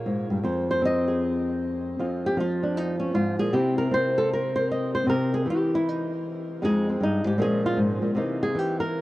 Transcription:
Already playing: A#2 G#3 A#3 G#4
0.06 G#2
0.30 G2
0.44 F2 C5
0.71 C5
0.82 C4 D#5
1.08 G#4
1.99 F2 F4
2.26 G4
2.37 F3 F4
2.64 D4
2.78 D#4
3.00 C#4
3.14 G#2 F4
3.39 A#2 G#4
3.52 C3 C4 E4 G4
3.78 A#4
3.91 C4 C5
4.18 A4
4.33 A#4
4.56 C5
4.72 D#5
4.95 C5
5.07 C3 A#4
5.34 G#4
5.46 E3
5.50 G4
5.75 E4
5.88 D#4
6.62 F2 G#3 C4 D#4 G#4
6.90 C4
7.01 G2 D#4
7.25 G#2 G4
7.38 A#2 F3 G#3 C#4 G#4
7.66 F4
7.77 G#2
8.02 A#2
8.15 C3 E3 A#3 D#4
8.43 G#4
8.55 E3 G4
8.80 A#4

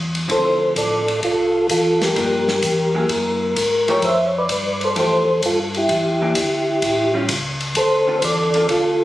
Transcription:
Already playing: E2
0.15 ride
0.28 D2 D3 F3 C4 E4 A4 C5, kick, ride
0.76 A1 A4 D5, kick, hi-hat pedal, ride
1.08 ride
1.23 C2 F4 A4, kick, ride
1.69 E2 F4 A4, kick, hi-hat pedal, ride
2.01 G4 A#4, snare, ride
2.16 G2 F3 A#3 D4, kick, ride
2.48 snare
2.62 E2, kick, hi-hat pedal, ride
2.95 F#3 A#3 E4 G#4
3.09 F#2, kick, ride
3.56 G#2, kick, hi-hat pedal, ride
3.88 F3 A3 E4 G4 A#4 C#5, ride
4.02 F2 C5 E5, kick, ride
4.26 C#5
4.38 B4 D5
4.49 G2, kick, hi-hat pedal, ride
4.81 A4 C5, ride
4.96 E2 F3 A3 E4 G4 A4 C5, kick, ride
5.42 G2 F4 A4, kick, hi-hat pedal, ride
5.74 E4 G4, ride
5.89 E2, kick, ride
6.21 E3 A#3 D4 G4
6.35 D2, kick, hi-hat pedal, ride
6.82 A1, kick, ride
7.14 G3 C#4 F4
7.29 C#2, kick, hi-hat pedal, ride
7.61 ride
7.75 D2 A4 C5, kick, ride
8.07 D3 C4 F4 A4
8.19 E2 C5, kick, hi-hat pedal, ride
8.24 A4 D5
8.54 D3 C4 F4 A4, ride
8.69 D2 F4 A4, kick, ride

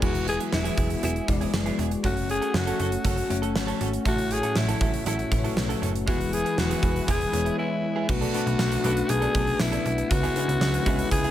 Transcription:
0.01 E1 E3 F#3 G#3 B3 E4 F#4 G#4 B4, kick, crash
0.15 muted clean electric guitar stroke, closed hi-hat
0.27 G#4, muted clean electric guitar stroke, closed hi-hat
0.39 F#3 B3 E4 G#4, closed hi-hat
0.52 E1 E4, muted clean electric guitar stroke, snare
0.64 F#3 B3 E4 G#4, closed hi-hat
0.77 E1 F#3 B3 E4 G#4, kick, closed hi-hat
0.90 muted clean electric guitar stroke, closed hi-hat
1.03 E1 F#3 B3 E4 G#4, closed hi-hat
1.15 muted clean electric guitar stroke, closed hi-hat
1.28 E1 G#3 E4 F#4 D5, muted clean electric guitar stroke, kick, closed hi-hat
1.41 F#3 B3 E4 G#4, closed hi-hat
1.53 F#1, muted clean electric guitar stroke, snare
1.66 F#3 B3 E4 G#4, closed hi-hat
1.78 E1 F#3 B3 E4 G#4, closed hi-hat
1.91 muted clean electric guitar stroke, closed hi-hat
2.03 F#1 A3 C#4 F#4 A4 C#5, kick, closed hi-hat
2.17 muted clean electric guitar stroke, closed hi-hat
2.29 G#4, muted clean electric guitar stroke, closed hi-hat
2.41 A3 C#4 F#4 A4, closed hi-hat
2.54 F#1 F#4, muted clean electric guitar stroke, snare
2.67 A3 C#4 F#4 A4, closed hi-hat
2.79 F#1 A3 C#4 F#4 A4, closed hi-hat
2.92 muted clean electric guitar stroke, closed hi-hat
3.04 F#1 A3 C#4 F#4 A4, kick, closed hi-hat
3.17 muted clean electric guitar stroke, closed hi-hat
3.29 F#1 A3 C#4 F#4 C#5, muted clean electric guitar stroke, closed hi-hat
3.42 A3 C#4 F#4 A4, closed hi-hat
3.55 G#1, muted clean electric guitar stroke, snare
3.67 A3 C#4 F#4 A4, closed hi-hat
3.80 G#1 A3 C#4 F#4 A4, closed hi-hat
3.93 closed hi-hat
4.05 A1 A2 F#3 A3 C#4 E4 F#4 A4 C#5, kick, closed hi-hat
4.18 muted clean electric guitar stroke, closed hi-hat
4.31 G#4, muted clean electric guitar stroke, closed hi-hat
4.43 F#3 C#4 E4 A4, closed hi-hat
4.56 A1 E4, muted clean electric guitar stroke, snare
4.68 F#3 C#4 E4 A4, closed hi-hat
4.81 A1 F#3 C#4 E4 A4, kick, closed hi-hat
4.93 muted clean electric guitar stroke, closed hi-hat
5.06 A1 F#3 C#4 E4 A4, closed hi-hat
5.19 muted clean electric guitar stroke, closed hi-hat
5.31 A1 A3 E4 F#4 B4, muted clean electric guitar stroke, kick, closed hi-hat
5.39 C#5
5.44 F#3 C#4 E4 A4, closed hi-hat
5.57 B1, muted clean electric guitar stroke, snare
5.69 F#3 C#4 E4 A4, closed hi-hat
5.82 F#1 F#3 C#4 E4 A4, closed hi-hat
5.94 muted clean electric guitar stroke, closed hi-hat
6.06 E1 E3 G#3 B3 E4 F#4 G#4 B4, kick, closed hi-hat
6.20 muted clean electric guitar stroke, closed hi-hat
6.32 G#4, muted clean electric guitar stroke, closed hi-hat
6.44 G#3 B3 E4 G#4, closed hi-hat
6.57 E1 F#4, muted clean electric guitar stroke, snare
6.70 G#3 B3 E4 G#4, closed hi-hat
6.82 E1 G#3 B3 E4 G#4, kick, closed hi-hat
6.95 muted clean electric guitar stroke, closed hi-hat
7.07 E1 G#3 B3 E4 G#4, kick, closed hi-hat
7.20 muted clean electric guitar stroke, closed hi-hat
7.33 E1 G#3 B3 E4 C#5, muted clean electric guitar stroke, closed hi-hat
7.45 G#3 B3 E4 G#4, closed hi-hat
7.58 G#3 B3 E4 G#4
7.71 muted clean electric guitar stroke
7.83 muted clean electric guitar stroke
7.96 G#3 B3 E4 G#4
8.08 B1 B2 A3 B3 D4 F#4 B4, muted clean electric guitar stroke, kick, crash
8.21 F#3 B3 D4 A4, closed hi-hat
8.33 F#3 A3 B3 D4 F#4 A4 B4, closed hi-hat
8.46 B1, closed hi-hat
8.59 B1, snare, tambourine
8.71 muted clean electric guitar stroke, closed hi-hat
8.84 B1 F#3 A3 B3 C#4 D4 F#4 A4 B4, closed hi-hat
8.91 D4
8.96 muted clean electric guitar stroke, closed hi-hat
9.09 B1 G#4, muted clean electric guitar stroke, closed hi-hat
9.21 F#3 B3 D4 A4, closed hi-hat
9.34 B1 F#3 B3 D4 A4, kick, closed hi-hat
9.47 muted clean electric guitar stroke, closed hi-hat
9.60 B1 E4, muted clean electric guitar stroke, snare, tambourine
9.72 F#3 B3 D4 A4, closed hi-hat
9.85 B1, muted clean electric guitar stroke, closed hi-hat
9.98 muted clean electric guitar stroke, closed hi-hat
10.10 C#2 C#3 G#3 C#4 E4 F#4 B4, muted clean electric guitar stroke, kick, closed hi-hat
10.23 G#3 B3 E4 G#4, closed hi-hat
10.36 G#3 B3 C#4 D4 E4 G#4 B4, closed hi-hat
10.42 E4
10.48 C#2, muted clean electric guitar stroke, closed hi-hat
10.61 C#2, snare, tambourine
10.74 muted clean electric guitar stroke, closed hi-hat
10.86 C#2 G#3 B3 C#4 E4 G#4 B4, kick, closed hi-hat
10.99 muted clean electric guitar stroke, closed hi-hat
11.11 C#2 G#4, muted clean electric guitar stroke, kick, closed hi-hat
11.24 G#3 B3 E4 G#4, closed hi-hat

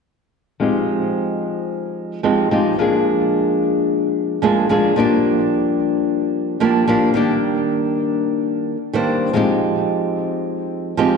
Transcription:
0.60 F3 G#3 C4 D#4 G4
2.23 F3 G#3 C4 D#4 G4
2.51 F3 G#3 C4 D#4 G4
2.78 F3 G#3 A#3 D4 G#4
4.42 F3 G#3 A#3 D4 G#4
4.69 F3 G#3 A#3 D4 G#4
4.96 F3 G3 A#3 D4 G4
6.60 F3 G3 A#3 D4 G4
6.87 F3 G3 A#3 D4 G4
7.14 D#3 G3 A#3 D4 G4
8.93 D#3 G3 A#3 D4 C5
9.33 F3 G#3 C4 D#4 G4
10.97 F3 G#3 C4 D#4 G4

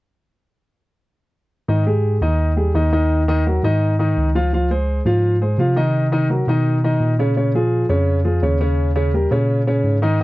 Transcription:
1.68 G#2 D#3 D#4 D#5
1.86 G#3 G4 G#4
2.21 D#2 D#3 D#4 D#5
2.56 G3 G4 G#4
2.75 D#2 D#3 D#4 D#5
2.92 D#3 D#4 D#5
3.28 D#3 D#4 D#5
3.47 F#3 F#4 A#4
3.63 G#2 D#3 D#4 D#5
3.99 D#3 D#4 D#5
4.17 C#2
4.35 F3 F4 F5
4.53 F3 F4 F5
4.71 G#3 G#4 C5
5.05 G#2 F3 F4 F5
5.42 G#3 G#4 C5
5.58 C3 F3 F4 F5
5.76 D#3 D#4 D#5
6.12 D#3 D#4 D#5
6.30 F#3 F#4 A#4
6.47 B2 D#3 D#4 D#5
6.84 D#3 D#4 D#5
7.00 A#2
7.19 C#3 C#4 C#5
7.37 C#3 C#4 C#5
7.55 F3 F4 G#4
7.89 F2 C#3 C#4 C#5
8.25 F3 F4 G#4
8.42 D#2 C#3 C#4 C#5
8.60 C#3 C#4 C#5
8.96 C#3 C#4 C#5
9.14 G3 G4 A#4
9.31 A#2 C#3 C#4 C#5
9.67 C#3 C#4 C#5
9.84 G#2
10.02 D#3 D#4 D#5

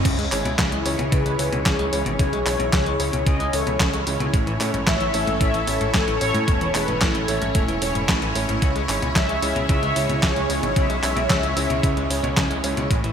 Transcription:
0.05 C#2 C#3 E3 C#4 E4 C#5, kick, closed hi-hat, crash
0.19 C#2 G#3, closed hi-hat
0.32 G#1 G#3 C#4 E4 C#5, clap, open hi-hat
0.45 C#2 B2, closed hi-hat
0.59 C#2 C#3 E4 G#4, kick, snare, clap, closed hi-hat
0.72 C#2 G#3, closed hi-hat
0.85 C#2 G#3 C#4 E4 C#5, open hi-hat
0.99 C#2 B2, closed hi-hat
1.12 C#2 C#3 G#4 B4, kick, closed hi-hat
1.26 C#2 G#3, closed hi-hat
1.39 C#2 G#3 C#4 E4 C#5, open hi-hat
1.53 C#2 B2, closed hi-hat
1.66 C#2 C#3 G#4 C#5, kick, snare, clap, closed hi-hat
1.79 C#2 G#3, closed hi-hat
1.93 C#2 G#3 C#4 E4 C#5, open hi-hat
2.06 G#1 B2, closed hi-hat
2.19 B1 C#3 G#4 C#5, kick, closed hi-hat
2.33 B1 G#3, closed hi-hat
2.46 B1 G#3 C#4 E4 C#5, clap, open hi-hat
2.59 B1 B2, closed hi-hat
2.73 C#2 C#3, kick, snare, clap, closed hi-hat
2.86 C#2 G#3, closed hi-hat
3.00 C#2 G#3 C#4 E4 C#5, open hi-hat
3.13 C#2 B2, closed hi-hat
3.27 C#2 C#3 G#4 D#5, kick, closed hi-hat
3.40 C#2 G#3, closed hi-hat
3.53 C#2 E3 C#4 E4 A4 C#5, open hi-hat
3.67 C#2 B2, closed hi-hat
3.80 C#2 C#3, kick, snare, clap, closed hi-hat
3.93 C#2 G#3, closed hi-hat
4.07 C#2 G#3 C#4 E4 C#5, open hi-hat
4.20 C#2 B2, closed hi-hat
4.34 A1 A2 A4, kick, closed hi-hat
4.47 A1 E3, closed hi-hat
4.60 A2 A3 C#4 E4 C#5, clap, open hi-hat
4.74 A1 G#2, closed hi-hat
4.87 A1 A2 C#5 E5, kick, snare, clap, closed hi-hat
5.01 A1 E3, closed hi-hat
5.14 A1 A3 C#4 E4 C#5, open hi-hat
5.27 A1 G#2, closed hi-hat
5.41 A1 A2 C#5 E5, kick, closed hi-hat
5.54 A1 E3, closed hi-hat
5.67 A1 A3 C#4 E4 C#5, open hi-hat
5.81 A1 G#2, closed hi-hat
5.94 A1 A2 A4 C#5, kick, snare, clap, closed hi-hat
6.08 A1 E3, closed hi-hat
6.21 A1 A3 C#4 E4 A4 C#5, open hi-hat
6.35 G#2 A2, closed hi-hat
6.48 E1 A2, kick, closed hi-hat
6.61 E1 E3, closed hi-hat
6.75 E1 A3 C#4 E4 G#4 B4 C#5, clap, open hi-hat
6.88 E1 G#2, closed hi-hat
7.01 A1 A2 E4 A4, kick, snare, clap, closed hi-hat
7.15 A1 E3, closed hi-hat
7.28 A1 A3 C#4 E4 C#5, open hi-hat
7.42 A1 G#2, closed hi-hat
7.55 E1 A2, kick, closed hi-hat
7.68 E1 E3, closed hi-hat
7.82 E1 A3 C#4 E4 C#5, open hi-hat
7.95 E1 G#2, closed hi-hat
8.09 A1 A2, kick, snare, clap, closed hi-hat
8.22 A1 E3, closed hi-hat
8.35 A1 A3 C#4 E4 C#5, open hi-hat
8.49 A1 G#2, closed hi-hat
8.62 C#2 C#3 G#3, kick, closed hi-hat
8.75 C#2 G#3, closed hi-hat
8.89 G#1 G#3 C#4 E4 C#5, clap, open hi-hat
9.02 C#2 B2, closed hi-hat
9.16 C#2 C#3 C#5 E5, kick, snare, clap, closed hi-hat
9.29 C#2 G#3, closed hi-hat
9.42 C#2 G#3 C#4 E4 C#5, open hi-hat
9.56 C#2 B2, closed hi-hat
9.69 C#2 C#3 C#5 E5, kick, closed hi-hat
9.83 C#2 G#3, closed hi-hat
9.96 C#2 G#3 C#4 E4 C#5, open hi-hat
10.09 C#2 B2, closed hi-hat
10.23 C#2 C#3 G#4 C#5, kick, snare, clap, closed hi-hat
10.36 C#2 G#3, closed hi-hat
10.50 C#2 G#3 C#4 E4 C#5, open hi-hat
10.63 G#1 B2, closed hi-hat
10.76 B1 C#3 C#5 E5, kick, closed hi-hat
10.90 B1 G#3, closed hi-hat
11.03 B1 G#3 C#4 E4 C#5, clap, open hi-hat
11.16 B1 B2, closed hi-hat
11.30 C#2 C#3, kick, snare, clap, closed hi-hat
11.43 C#2 G#3, closed hi-hat
11.57 C#2 G#3 C#4 E4 C#5, open hi-hat
11.70 C#2 B2, closed hi-hat
11.83 C#2 C#3, kick, closed hi-hat
11.97 C#2 G#3, closed hi-hat
12.10 C#2 G#3 C#4 E4 C#5, open hi-hat
12.24 C#2 B2, closed hi-hat
12.37 C#2 C#3, kick, snare, clap, closed hi-hat
12.50 C#2 G#3, closed hi-hat
12.64 C#2 G#3 C#4 E4 C#5, open hi-hat
12.77 C#2 B2, closed hi-hat
12.90 A1 A2 C#4 E4 A4 C#5, kick, closed hi-hat
13.04 A1 E3, closed hi-hat

